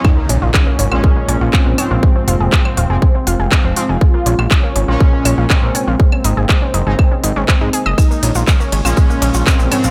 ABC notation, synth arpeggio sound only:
X:1
M:4/4
L:1/16
Q:1/4=121
K:Bbm
V:1 name="Synth arpeggio sound"
A, B, D F A, B, D F A, B, D F A, B, D F | A, C F A A, C F A A, C F A A, C F A | A, B, D F A, B, D F A, B, D F A, B, D F | A, D E A A, D E A A, D E D A, E A e |
A, B, D F A, B, D F A, B, D F A, B, D F |]